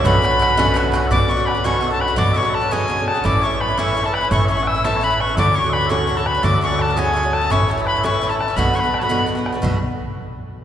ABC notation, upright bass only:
X:1
M:6/8
L:1/8
Q:3/8=113
K:Bdor
V:1 name="Upright bass" clef=bass
B,,,6 | B,,,6 | B,,,6 | A,,,6 |
A,,,6 | D,,6 | D,,6 | A,,,6 |
B,,,6 | B,,, z4 z |]